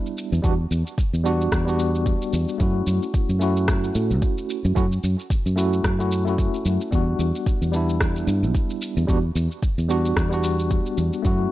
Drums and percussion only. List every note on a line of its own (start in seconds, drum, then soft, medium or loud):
0.06 shaker soft
0.18 shaker medium
0.33 shaker soft
0.44 kick loud
0.44 shaker soft
0.71 shaker medium
0.87 shaker soft
0.98 kick loud
0.98 shaker soft
1.14 shaker soft
1.26 shaker medium
1.41 shaker soft
1.52 kick loud
1.52 cross-stick medium
1.52 shaker soft
1.68 shaker soft
1.79 shaker medium
1.95 shaker soft
2.06 kick loud
2.06 shaker soft
2.22 shaker soft
2.33 shaker medium
2.49 shaker soft
2.60 kick loud
2.60 shaker soft
2.87 shaker medium
3.02 shaker soft
3.14 kick loud
3.14 shaker soft
3.30 shaker soft
3.41 shaker medium
3.57 shaker soft
3.68 kick loud
3.68 cross-stick medium
3.68 shaker soft
3.84 shaker soft
3.95 shaker medium
4.11 shaker soft
4.22 kick loud
4.22 shaker soft
4.38 shaker soft
4.50 shaker medium
4.65 shaker soft
4.76 kick loud
4.76 shaker soft
4.92 shaker soft
5.04 shaker medium
5.19 shaker soft
5.30 kick loud
5.30 shaker soft
5.46 shaker soft
5.58 shaker medium
5.73 shaker soft
5.84 kick loud
5.84 cross-stick medium
5.84 shaker soft
6.00 shaker soft
6.12 shaker medium
6.27 shaker soft
6.38 kick loud
6.38 shaker soft
6.54 shaker soft
6.66 shaker medium
6.81 shaker soft
6.92 kick loud
6.92 shaker soft
7.20 shaker medium
7.35 shaker soft
7.46 kick loud
7.46 shaker soft
7.62 shaker soft
7.74 shaker medium
7.89 shaker soft
8.00 kick loud
8.00 cross-stick medium
8.00 shaker soft
8.16 shaker soft
8.28 shaker medium
8.43 shaker soft
8.55 kick loud
8.55 shaker soft
8.70 shaker soft
8.82 shaker medium
8.97 shaker soft
9.08 kick medium
9.08 shaker soft
9.36 shaker medium
9.51 shaker soft
9.62 kick medium
9.62 shaker soft
9.78 shaker soft
9.90 shaker medium
10.05 shaker soft
10.17 kick loud
10.17 cross-stick medium
10.17 shaker soft
10.32 shaker soft
10.44 shaker medium
10.59 shaker soft
10.71 kick loud
10.71 shaker soft
10.86 shaker soft
10.98 shaker medium
11.13 shaker soft
11.25 kick medium
11.25 shaker soft